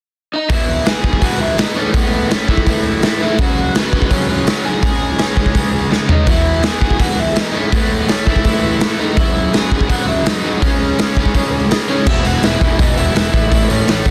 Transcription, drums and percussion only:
0.50 kick loud
0.50 open hi-hat medium
0.86 snare loud
0.86 open hi-hat medium
1.04 kick medium
1.13 kick medium
1.22 kick loud
1.22 open hi-hat medium
1.58 snare loud
1.58 open hi-hat medium
1.94 kick loud
1.94 open hi-hat medium
2.31 snare loud
2.31 open hi-hat soft
2.48 kick medium
2.57 kick medium
2.67 kick loud
2.67 open hi-hat medium
3.02 snare loud
3.02 open hi-hat medium
3.38 kick loud
3.38 open hi-hat medium
3.75 snare loud
3.75 open hi-hat medium
3.93 kick medium
4.02 kick medium
4.10 kick loud
4.10 open hi-hat medium
4.47 snare loud
4.47 open hi-hat medium
4.83 kick loud
4.83 open hi-hat medium
5.18 snare loud
5.18 open hi-hat medium
5.37 kick medium
5.46 kick medium
5.55 kick loud
5.55 open hi-hat medium
5.92 snare medium
6.09 floor tom medium
6.26 kick loud
6.26 open hi-hat medium
6.63 snare loud
6.63 open hi-hat medium
6.81 kick medium
6.90 kick medium
6.99 kick medium
6.99 open hi-hat medium
7.36 snare loud
7.36 open hi-hat medium
7.72 kick loud
7.72 open hi-hat medium
8.08 snare loud
8.08 open hi-hat medium
8.27 kick medium
8.36 kick medium
8.44 kick loud
8.44 open hi-hat medium
8.80 snare loud
8.80 open hi-hat medium
9.17 kick loud
9.17 open hi-hat medium
9.53 snare loud
9.53 open hi-hat soft
9.72 kick medium
9.81 kick medium
9.89 kick loud
9.89 open hi-hat medium
10.26 snare loud
10.26 open hi-hat medium
10.62 kick loud
10.62 open hi-hat medium
10.99 snare loud
10.99 open hi-hat medium
11.17 kick medium
11.26 kick medium
11.34 kick loud
11.34 open hi-hat medium
11.71 snare loud
11.71 open hi-hat medium
12.06 kick loud
12.06 crash loud
12.25 open hi-hat medium
12.43 snare loud
12.43 open hi-hat medium
12.61 kick medium
12.61 open hi-hat medium
12.79 kick loud
12.79 open hi-hat medium
12.97 open hi-hat medium
13.16 snare loud
13.16 open hi-hat medium
13.34 kick medium
13.34 open hi-hat medium
13.52 kick loud
13.52 open hi-hat medium
13.70 open hi-hat medium
13.88 snare loud
13.88 open hi-hat medium
14.05 kick medium
14.05 open hi-hat medium

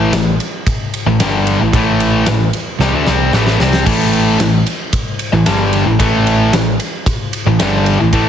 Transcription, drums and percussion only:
0.13 snare loud
0.13 ride medium
0.40 ride medium
0.67 kick loud
0.67 ride medium
0.94 ride medium
1.20 snare loud
1.20 ride loud
1.47 ride medium
1.73 kick loud
1.73 ride loud
2.00 ride medium
2.26 snare loud
2.26 ride medium
2.53 ride medium
2.80 snare medium
3.07 snare medium
3.33 snare medium
3.47 snare medium
3.60 snare medium
3.73 snare medium
3.86 kick loud
3.86 crash loud
3.86 ride medium
4.13 ride medium
4.40 snare loud
4.40 ride medium
4.66 ride medium
4.93 kick loud
4.93 ride medium
5.19 ride medium
5.46 snare loud
5.46 ride loud
5.73 ride medium
6.00 kick loud
6.00 ride loud
6.27 ride medium
6.53 snare loud
6.53 ride medium
6.80 ride medium
7.06 kick loud
7.06 ride medium
7.33 ride medium
7.60 snare loud
7.60 ride medium
7.86 ride medium
8.13 kick loud
8.13 ride medium

